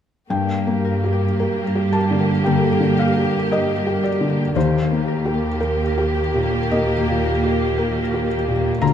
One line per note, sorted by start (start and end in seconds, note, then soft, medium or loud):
0.30 4.51 G2 soft
0.30 2.42 G2 soft
0.30 4.20 G2 soft
0.30 4.52 A#3 soft
0.30 4.52 G4 soft
0.30 1.89 G5 medium
0.58 2.19 A#3 soft
0.67 1.25 A#3 soft
0.85 1.65 A#4 soft
1.04 1.61 G4 soft
1.13 1.92 G4 soft
1.40 1.97 A#4 soft
1.40 3.50 G5 soft
1.66 2.97 A#4 soft
1.75 2.32 G4 soft
1.93 3.23 G4 soft
1.93 2.42 A5 soft
2.11 2.67 D3 soft
2.20 2.71 A#3 soft
2.44 4.60 D3 soft
2.44 3.02 A#3 soft
2.44 2.94 G5 soft
2.72 4.28 A#3 soft
2.80 3.37 D3 soft
2.98 3.76 A#4 soft
2.98 3.48 F5 soft
3.17 3.72 G4 soft
3.24 4.02 G4 soft
3.51 4.07 A#4 soft
3.51 4.00 D#5 medium
3.51 5.59 G5 soft
3.77 5.06 A#4 soft
3.87 4.42 G4 soft
4.03 5.33 G4 soft
4.03 4.52 D5 soft
4.21 4.56 D3 soft
4.29 4.80 A#3 soft
4.55 8.78 D#2 soft
4.55 6.68 D#2 soft
4.55 8.45 D#3 soft
4.55 8.78 A#3 soft
4.55 8.78 G4 soft
4.55 5.57 C5 soft
4.82 6.42 A#3 soft
4.91 5.47 A#3 soft
5.08 5.86 A#4 soft
5.25 5.82 G4 soft
5.34 6.14 G4 soft
5.60 6.19 A#4 soft
5.60 7.77 G5 soft
5.87 7.24 A#4 soft
5.98 6.57 G4 soft
6.15 7.50 G4 soft
6.34 6.93 A#2 soft
6.43 6.97 A#3 soft
6.71 7.29 A#3 soft
6.71 8.86 D#4 soft
6.71 8.27 D#5 soft
6.98 8.55 A#3 soft
7.09 7.65 A#2 soft
7.25 8.03 A#4 soft
7.43 7.99 G4 soft
7.52 8.29 G4 soft
7.78 8.34 A#4 soft
7.78 8.86 G5 soft
8.04 8.93 A#4 soft
8.14 8.69 G4 soft
8.30 8.86 G4 soft
8.48 8.82 A#2 soft
8.56 8.93 A#3 soft
8.81 8.93 D2 soft
8.81 8.93 D3 soft
8.81 8.93 A#3 soft
8.81 8.93 F4 soft
8.81 8.93 A#5 medium